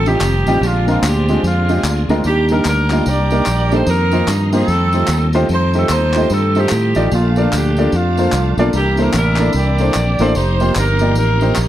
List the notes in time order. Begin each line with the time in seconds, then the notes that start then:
Already playing: A1 D#3 G3 A3 C4 F4
0.06 G3 C4 D#4 F4 G4, tambourine
0.21 F1, clap, tambourine
0.46 A1 G3 C4 D#4 F4 G4, tambourine
0.61 A#1 A#2 D3 G#3 A#3 C4 D4 F4, tambourine
0.65 F4
0.87 G#3 C4 D4 F4 A#4, tambourine
1.03 D2 C4 D4 G4, clap, tambourine
1.28 G#3 C4 D4 F4 G#4, tambourine
1.43 F2 G#3 D4 F4, tambourine
1.69 G#3 C4 D4 F4 G4, tambourine
1.83 D2, clap, tambourine
2.09 D2 G#3 C4 D4 F4 A#4, tambourine
2.24 D#2 D#3 G3 A#3 D4 G4, tambourine
2.49 G3 A#3 D4 D#4 A#4, tambourine
2.65 D2 D4 G4 A#4, clap, tambourine
2.90 G3 A#3 D4 D#4 F4, clap, tambourine
3.06 C2 G4 A#4 D5, tambourine
3.30 G3 A#3 D4 D#4 A#4, tambourine
3.46 A#1, clap, tambourine
3.72 G3 A#3 D4 D#4 A4 C5, tambourine
3.87 F2 D#3 F3 A#3 C4 D#4 F4 A#4, tambourine
4.11 A#3 C4 D#4 F4 C5, tambourine
4.27 G2, clap, tambourine
4.53 A#3 C4 D#4 F4 A4 C5, tambourine
4.68 F2 D#3 G3 A3 C4 F4, tambourine
4.93 A3 D#4 F4 G4 C5, tambourine
5.07 D#2, clap, tambourine
5.33 A3 D#4 F4 G4 C5, tambourine
5.49 F2 D#4 A4 C5, tambourine
5.74 A3 D#4 F4 G4 C5, tambourine
5.78 A4
5.89 D#2 D#4 A4 C5, clap, tambourine
6.13 A3 D#4 F4 G4 D#5, clap, tambourine
6.30 G2 C4 D#4 A4, tambourine
6.55 A3 C4 D#4 F4 G4 C5, tambourine
6.59 G4
6.69 A2, clap, tambourine
6.95 A1 A3 D#4 F4 G4 D5, tambourine
7.11 A#1 A#2 F3 A3 D4 F4 A4, tambourine
7.36 A#3 D4 F4 A4 D5, tambourine
7.53 D2 D4 G4, clap, tambourine
7.76 A#3 D4 F4 A4 D5, tambourine
7.92 F2 A3 D4 F4, tambourine
8.18 A#3 D4 F4 A4 C5, tambourine
8.32 C2, clap, tambourine
8.57 B1 A#3 D4 F4 A4 D5, tambourine
8.73 C2 C3 E3 A#3 C4 D4 E4 G4 A#4, tambourine
8.97 A#3 D4 E4 A4 A#4 C5, tambourine
9.13 A1 D4 E4 A#4, clap, tambourine
9.36 A#3 D4 E4 D5, clap, tambourine
9.40 A4
9.53 C2 G4 A#4 D5, tambourine
9.78 A#3 D4 E4 A4 C5, tambourine
9.94 A#1, clap, tambourine
10.19 A1 A#3 D4 E4 A4 C5, tambourine
10.34 F1 F3 A#3 C4 D#4 G4 C5, tambourine
10.60 A#3 D#4 F4 G4 C5, tambourine
10.75 G1 D#4 G4 A#4, clap, tambourine
10.99 A#3 D#4 F4 G4 D5, tambourine
11.15 A1 D#4 G4 A#4, tambourine
11.41 A#3 D#4 F4 G4 C5, tambourine
11.56 A#1, clap, tambourine